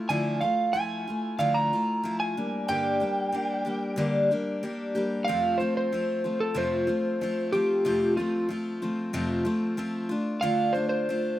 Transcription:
0.09 D3 F3 A3 E4 F4 G#5
0.41 A3 F4 F5
0.73 F3 A3 E4 F4 G#5
1.07 A3 E4 F4
1.38 D3 F3 A3 E4 F4 F5
1.54 A#5
1.73 A3 E4 F4
2.03 F3 A3 E4 F4
2.20 G#5
2.37 G3 A#3 D4
2.68 G2 D3 G3 A#3 D4 G4 G5
3.00 G3 A#3 D4 G4
3.32 G3 A#3 D4 G4
3.65 G3 A#3 D4 G4
3.96 G2 D3 G3 A#3 D4 G4
4.31 G3 A#3 D4 G4
4.63 G3 A#3 D4 G4
4.95 G3 A#3 D4 G4
5.25 F2 C3 F5
5.29 F3 A3 C4 F4
5.58 A3 C4 F4 C5
5.62 F3
5.77 C5
5.92 F3 A3 C4 F4
6.24 F3 A3 C4 F4
6.40 A4
6.54 F2 C3 F3 A3 C4 F4 C5
6.87 F3 A3 C4 F4
7.21 F3 A3 C4 F4
7.52 F3 A3 C4 F4 G4
7.85 F2 C3 F3 A3 C4 F4
8.17 F3 A3 C4 F4
8.49 F3 A3 C4 F4
8.82 F3 A3 C4 F4
9.13 F2 C3 F3 A3 C4 F4
9.45 F3 A3 C4 F4
9.77 F3 A3 C4 F4
10.09 A3 D4 F4
10.41 D3 A3 D4 F4 F5
10.73 A3 D4 F4 C5
10.89 C5
11.09 A3 D4 F4

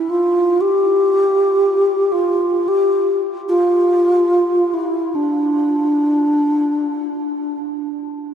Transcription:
Already playing: E4 E5
0.09 F4
0.60 G4
2.12 F4
2.68 G4
3.48 F4
4.73 E4
5.15 D4

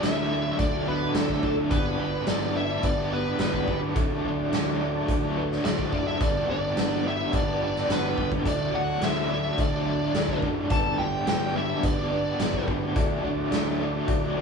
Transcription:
Already playing: A3 D4 F#4 D5
0.01 D2 D3 F#3 A3 D4 E4 F#4 A4 D5 E5, snare, closed hi-hat
0.29 D3 F#3 A3 D4 F#4 A4 D5
0.44 F#3 A3 D4
0.58 D2 D4 F#4 A4 D5 E5, kick, closed hi-hat
0.71 F#3 A3 D4
0.86 D3 F#3 A3 B3 D4 F#4 A4 B4 D5
1.01 F#3 A3 D4
1.14 D2 D3 F#3 A3 F#4 A4 D5, snare, closed hi-hat
1.19 D4
1.29 F#3 A3 D4, kick
1.42 D2 D3 F#3 A3 F#4 A4 D5, kick
1.46 D4
1.57 F#3 A3 D4
1.70 G1 G2 D3 G3 B3 D4 G4 B4 D5, kick, closed hi-hat
1.97 G1 D3 G3 B3 D4 G4 B4 D5
2.26 G1 G2 D3 G3 B3 D4 G4 B4 D5, snare, closed hi-hat
2.54 D3 G3 B3 D4 E4 G4 B4 D5 E5
2.68 G3 B3 D4
2.83 G1 D4 G4 B4 D5 E5, kick, closed hi-hat
2.96 G3 B3 D4
3.10 D3 G3 B3 D4 G4 B4 D5
3.24 G3 B3 D4
3.38 G1 G2 D3 G3 B3 D4 G4 B4 D5, snare, closed hi-hat
3.52 G3 B3 D4, kick
3.67 G1 D3 G3 B3 D4 G4 B4 D5, kick
3.82 G3 B3 D4
3.95 D2 D3 F#3 A3 D4 F#4 A4 D5, kick, closed hi-hat
4.24 D2 D3 F#3 A3 D4 F#4 A4 D5
4.51 D2 D3 F#3 A3 D4 F#4 A4 D5, snare, closed hi-hat
4.80 D3 F#3 A3 D4 F#4 A4 D5
4.94 F#3 A3 D4
5.08 D2 F#4 A4 D5, kick, closed hi-hat
5.23 F#3 A3 D4
5.37 D3 F#3 A3 D4 F#4 A4 B4
5.50 F#3 A3 D4, snare
5.64 D2 D3 F#3 A3 D4 F#4 A4 C5 D5, snare, closed hi-hat
5.78 F#3 A3 D4, kick
5.92 F#1 D3 F#3 A3 D4 F#4 A4 D5, kick
6.06 F#3 A3 D4 E4 E5
6.19 G1 G2 D3 G3 B3 D4 G4 B4 D5, kick, closed hi-hat
6.48 G1 D3 G3 B3 D4 G4 B4 D5
6.76 G1 G2 D3 G3 B3 D4 G4 B4 D5, snare, closed hi-hat
7.05 D3 G3 B3 D4 E4 G4 B4 D5 E5
7.19 G3 B3 D4
7.32 G1 D4 G4 B4 D5, kick, closed hi-hat
7.46 G3 B3 D4
7.61 D3 G3 B3 D4 G4 B4 D5
7.75 G3 B3 D4, snare
7.88 G1 G2 D3 G3 B3 D4 G4 B4 D5, snare, closed hi-hat
8.03 G3 B3 D4
8.17 G1 D3 G3 B3 D4 G4 B4 D5, kick
8.32 G3 B3 D4, kick
8.45 D2 D3 F#3 A3 D4 F#4 A4 D5, kick, closed hi-hat
8.72 D2 D3 F#3 A3 D4 F#4 A4 D5 F#5
8.76 F#4
9.01 D2 D3 F#3 A3 D4 E4 F#4 A4 C5 E5, snare, closed hi-hat
9.28 D3 F#3 A3 D4 F#4 A4 D5
9.44 F#3 A3 D4
9.57 D2 D4 F#4 A4 D5, kick, closed hi-hat
9.72 F#3 A3 D4
9.85 D3 F#3 A3 D4 F#4 A4 E5
10.00 F#3 A3 D4
10.13 D2 D3 F#3 A3 D4 F#4 A4 D5, snare, closed hi-hat
10.28 F#3 A3 D4, kick
10.42 F#1 D3 F#3 A3 D4 F#4 A4 D5, kick
10.55 F#3 A3 D4
10.70 G1 G2 D3 G3 B3 D4 G4 A4 B4 D5 A5, kick, closed hi-hat
10.98 G1 D3 G3 B3 D4 G4 B4 E5 G5
11.25 G1 G2 D3 G3 B3 D4 G4 B4 D5 G5, snare, closed hi-hat
11.54 D3 G3 B3 D4 E4 G4 B4 D5 E5
11.68 G3 B3 D4
11.82 G1 D4 G4 B4 D5, kick, closed hi-hat
11.96 G3 B3 D4
12.09 D3 G3 B3 D4 G4 B4 D5
12.24 G3 B3 D4
12.38 G1 G2 D3 G3 B3 D4 G4 B4 E5, snare, closed hi-hat
12.52 G3 B3 D4, kick
12.66 G1 D3 G3 B3 D4 G4 B4 D5, kick
12.80 G3 B3 D4
12.94 D2 D3 F#3 A3 D4 F#4 A4 D5, kick, closed hi-hat
13.22 D2 D3 F#3 A3 D4 F#4 A4 D5
13.50 D2 D3 F#3 A3 D4 F#4 A4 D5, snare, closed hi-hat
13.79 D3 F#3 A3 D4 F#4 A4 D5
13.93 F#3 A3 D4
14.07 D2 F#4 A4 D5, kick, closed hi-hat
14.21 F#3 A3 D4
14.35 D3 F#3 A3 D4 F#4 A4 C5

